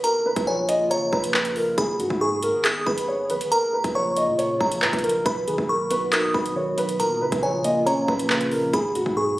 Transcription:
0.04 C#3 A#3 F4 A#4 A#5, closed hi-hat
0.26 B4
0.36 A#1, kick, closed hi-hat
0.47 C#5 G#5
0.69 D#5, closed hi-hat
0.90 G#1 C#5 A#5, closed hi-hat
1.02 A#1
1.13 A#1 B4 A#5, kick
1.24 closed hi-hat
1.34 B4, clap
1.45 closed hi-hat
1.56 A#4, open hi-hat
1.78 G#1 D#3 B3 G#4 B5, kick, closed hi-hat
2.00 G#2 F#4, closed hi-hat
2.10 G#2, kick
2.21 G#4 C#6
2.43 A#4, closed hi-hat
2.64 G#4 D#6, clap, closed hi-hat
2.86 G#1 B4 B5, kick
2.98 closed hi-hat
3.08 C#5
3.30 B1 B4, closed hi-hat
3.41 G#1, closed hi-hat
3.52 C#3 A#3 F4 A#4 A#5, closed hi-hat
3.73 B4
3.84 A#1, kick, closed hi-hat
3.95 C#5 C#6
4.17 D#5, closed hi-hat
4.28 A#2
4.38 C#5, closed hi-hat
4.61 A#1 A#5, kick
4.72 closed hi-hat
4.82 A#2 B4, clap
4.93 A#1, kick, closed hi-hat
4.99 closed hi-hat
5.04 A#4, closed hi-hat
5.09 closed hi-hat
5.25 B1 B2 D#3 B3 F#4 B4 B5, kick, closed hi-hat
5.47 D#3 G#4, closed hi-hat
5.58 B1, kick
5.69 A#4 C#6
5.91 B3 B4, closed hi-hat
6.12 D#4 A#4 D#6, clap, closed hi-hat
6.34 B1 B2 B4 B5, kick
6.46 closed hi-hat
6.56 D#3 C#5
6.78 F#3 B4, closed hi-hat
6.89 closed hi-hat
7.00 A#2 C#3 A#3 F4 A#4 A#5, closed hi-hat
7.21 C#3 B4
7.32 A#1, kick, closed hi-hat
7.43 C#5 G#5
7.64 A#3 D#5, closed hi-hat
7.86 G#1 C#4 C#5 A#5, closed hi-hat
7.97 A#1
8.08 A#1 A#2 B4 A#5, kick
8.19 closed hi-hat
8.30 C#3 B4, clap
8.41 closed hi-hat
8.52 F3 A#4, open hi-hat
8.73 G#1 G#2 D#3 B3 G#4 B5, kick, closed hi-hat
8.95 G#2 B2 F#4, closed hi-hat
9.06 G#2, kick
9.17 G#4 C#6

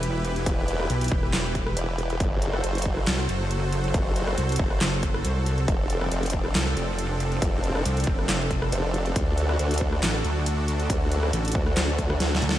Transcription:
Already playing: E1 E3 E4 G4 B4
0.03 closed hi-hat
0.25 closed hi-hat
0.36 closed hi-hat
0.46 E1, kick, closed hi-hat
0.68 closed hi-hat
0.80 cross-stick
0.90 B1, closed hi-hat
1.01 closed hi-hat
1.04 closed hi-hat
1.08 E1, kick, closed hi-hat
1.23 cross-stick
1.33 snare, clap, closed hi-hat
1.55 kick, closed hi-hat
1.67 cross-stick
1.77 E1, closed hi-hat
1.98 closed hi-hat
2.10 closed hi-hat
2.20 F#1 F#3 F#4 A4 C5, kick, closed hi-hat
2.42 closed hi-hat
2.53 cross-stick
2.64 F#1, closed hi-hat
2.75 closed hi-hat
2.78 closed hi-hat
2.82 kick, closed hi-hat
2.97 cross-stick
3.07 C2, snare, clap, closed hi-hat
3.19 cross-stick
3.29 F#1, closed hi-hat
3.51 closed hi-hat
3.72 closed hi-hat
3.84 closed hi-hat
3.94 F#1, kick, closed hi-hat
4.16 closed hi-hat
4.27 cross-stick
4.38 C2, closed hi-hat
4.49 closed hi-hat
4.52 closed hi-hat
4.56 F#1, kick, closed hi-hat
4.71 cross-stick
4.81 F#1, snare, clap, closed hi-hat
5.03 kick, closed hi-hat
5.14 cross-stick
5.25 C2, closed hi-hat
5.46 closed hi-hat
5.58 closed hi-hat
5.68 F1 F3 C4 D4, kick, closed hi-hat
5.90 closed hi-hat
6.01 cross-stick
6.12 F1, closed hi-hat
6.23 closed hi-hat
6.26 closed hi-hat
6.30 kick, closed hi-hat
6.45 cross-stick
6.55 C2, snare, clap, closed hi-hat
6.67 cross-stick
6.77 F1, closed hi-hat
6.99 closed hi-hat
7.20 closed hi-hat
7.32 closed hi-hat
7.42 F1, kick, closed hi-hat
7.64 closed hi-hat
7.75 cross-stick
7.85 C2, closed hi-hat
7.97 closed hi-hat
8.00 closed hi-hat
8.04 F1, kick, closed hi-hat
8.19 cross-stick
8.29 snare, clap, closed hi-hat
8.51 kick, closed hi-hat
8.62 cross-stick
8.72 F1, closed hi-hat
8.94 closed hi-hat
9.06 closed hi-hat
9.16 D2 D3 F#4, kick, closed hi-hat
9.38 closed hi-hat
9.49 cross-stick
9.59 D2, closed hi-hat
9.71 closed hi-hat
9.74 closed hi-hat
9.78 kick, closed hi-hat
9.93 cross-stick
10.03 A1, snare, clap, closed hi-hat
10.14 cross-stick
10.25 D2, closed hi-hat
10.46 closed hi-hat
10.68 closed hi-hat
10.80 closed hi-hat
10.90 D2, kick, closed hi-hat
11.12 closed hi-hat
11.23 cross-stick
11.33 A1, closed hi-hat
11.45 closed hi-hat
11.48 closed hi-hat
11.52 D2, kick, closed hi-hat
11.67 cross-stick
11.77 snare, clap, closed hi-hat
11.99 kick, closed hi-hat
12.10 cross-stick
12.20 D2, snare, closed hi-hat
12.35 snare
12.42 D2, closed hi-hat
12.49 snare
12.54 closed hi-hat

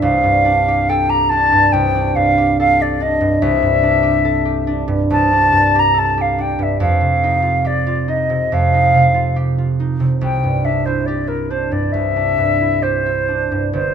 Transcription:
Already playing: G3 D4 G4
0.02 C2 F5
0.24 G2
0.45 D4
0.68 G4
0.89 A4 G5
1.09 G4 A#5
1.29 D4 A5
1.52 G2
1.72 C2 G5
1.95 D4
2.16 G2 F5
2.38 G4
2.60 A4 F5
2.80 G4 D5
3.00 D4 D#5
3.21 G2
3.42 C2 E5
3.62 G2
3.83 D4
4.03 G4
4.25 A4
4.45 G4
4.67 D4
4.88 G2
5.10 C2 A5
5.32 D4
5.52 G2
5.75 G4
5.79 A#5
5.94 A4
5.99 A5
6.18 G4 F5
6.38 D4 G5
6.59 G2 E5
6.80 F2 F5
7.01 C3
7.24 D#4
7.42 F4
7.65 G4 D5
7.87 F4
8.08 D#4 D#5
8.30 C3
8.52 F2 F5
8.74 D#4
8.94 C3
9.14 F4
9.36 G4
9.58 F4
9.80 D#4
10.00 C3
10.21 C2 G5
10.44 G2
10.64 D4 E5
10.86 E4 C5
11.06 G4 D5
11.27 E4 A#4
11.50 D4 C5
11.72 G2 D5
11.92 C2 E5
12.16 D4
12.38 G2
12.61 E4
12.83 G4 C5
13.06 E4
13.28 D4
13.52 G2
13.73 G1 C5

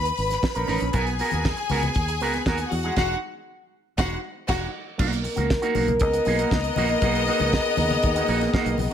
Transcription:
Already playing: D#2 B4 B5
0.05 muted clean electric guitar stroke, closed hi-hat
0.17 G#1, open hi-hat
0.30 muted clean electric guitar stroke, snare, closed hi-hat
0.42 muted clean electric guitar stroke, kick, snare
0.55 A#1 C#4 D#4 A#4, closed hi-hat
0.67 A1 C#4 D#4 A#4, open hi-hat, muted conga, high conga
0.80 A#1, muted clean electric guitar stroke, closed hi-hat
0.93 B1 B3 F#4 G#4 A#4 G#5, kick, closed hi-hat
1.07 muted clean electric guitar stroke, closed hi-hat
1.19 B3 F#4 A#4, open hi-hat
1.31 D#2 B3 F#4 A#4, closed hi-hat, high conga
1.45 kick, snare
1.57 muted clean electric guitar stroke, closed hi-hat
1.69 C#2 B3 F#4 A#4, open hi-hat, high conga, low conga
1.83 muted clean electric guitar stroke, closed hi-hat, high conga, low conga
1.94 D#2, kick, closed hi-hat, muted conga
2.08 muted clean electric guitar stroke, closed hi-hat
2.20 C#2 B3 F#4 A#4, open hi-hat, muted conga
2.34 muted clean electric guitar stroke, snare, closed hi-hat
2.46 D#2 B3 F#4 A#4, kick, snare, muted conga
2.58 muted clean electric guitar stroke, closed hi-hat
2.71 E2 F#4 F#5, muted clean electric guitar stroke, open hi-hat, high conga
2.83 G#3 D#4 G#4, closed hi-hat
2.96 E1 G#3 D#4 F#4 F#5, kick, snare, crash
3.98 E1 G#3 D#4 F#4 F#5, kick, snare
4.47 E1 G#3 D#4 F#4 F#5, kick, snare, crash
4.98 B1 D#3 A#3 B3 D#4 F#4 A#4, kick, crash
5.12 muted clean electric guitar stroke, closed hi-hat
5.23 muted clean electric guitar stroke, open hi-hat, muted conga
5.36 C#2 A#3 D#4 F#4, closed hi-hat, high conga
5.50 muted clean electric guitar stroke, kick, snare, muted conga
5.62 A#3 D#4 F#4, closed hi-hat
5.75 B1 A#3 D#4 F#4, open hi-hat, high conga, low conga
5.88 muted clean electric guitar stroke, closed hi-hat, high conga, low conga
6.00 C#2 B3 A#4 D#5, muted clean electric guitar stroke, kick, closed hi-hat
6.14 muted clean electric guitar stroke, closed hi-hat
6.25 B1 A#3 D#4 G#4, open hi-hat, muted conga
6.38 A#3 D#4 F#4, closed hi-hat
6.51 C#2, kick, snare
6.64 muted clean electric guitar stroke, closed hi-hat
6.76 A#1 A#3 D#4 F#4, open hi-hat, muted conga, high conga, low conga
6.89 muted clean electric guitar stroke, closed hi-hat
7.01 B1 A#3 D#4 F#4 G#4, kick, closed hi-hat
7.15 closed hi-hat
7.27 A#3 D#4 F#4, open hi-hat
7.40 C#2 A#3 D#4 F#4, closed hi-hat, high conga
7.53 muted clean electric guitar stroke, kick, snare
7.65 muted clean electric guitar stroke, closed hi-hat
7.77 D#2, open hi-hat, muted conga, high conga, low conga
7.91 muted clean electric guitar stroke, closed hi-hat, high conga, low conga
8.03 D#2, muted clean electric guitar stroke, kick, closed hi-hat, muted conga
8.16 A#3 D#4 F#4, closed hi-hat
8.27 A#1 A#3 D#4 F#4, open hi-hat, muted conga
8.41 muted clean electric guitar stroke, snare, closed hi-hat
8.54 A#3 D#4 F#4, kick, snare
8.66 B1, muted clean electric guitar stroke, closed hi-hat
8.78 B1, muted clean electric guitar stroke, open hi-hat, high conga, low conga

